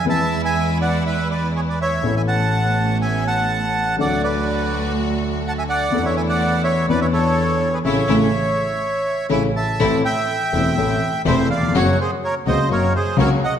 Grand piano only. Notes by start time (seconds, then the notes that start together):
0.03 E2 E3 G#3 B3 B4
2.01 A1 A2 E3 B3 C#4
2.05 A4
3.97 D2 D3 F#3 A3 D4 A4
5.92 E2 E3 B3 D4 A4
6.88 E2 E3 B3 D4 B4
7.85 C#3 E3 A3
8.09 C#3 E3 A3
9.29 C#3 E3 A3
9.80 A1 A2 E3 A3 C4 A4
10.53 E1 E2 E3 A3 C4 A4
10.77 A1 A2 E3 A3 C4 A4
11.25 E1 E2 E3 A3 C4 A4
11.57 D#2
11.63 E2
11.69 F2
11.74 F#2 C#3 F#3 A#3 F#4
12.46 C#2 C#3 F#3 A#3 F#4
12.70 F#2 C#3 F#3 A#3 F#4
13.17 C#2 C#3 F#3 A#3 F#4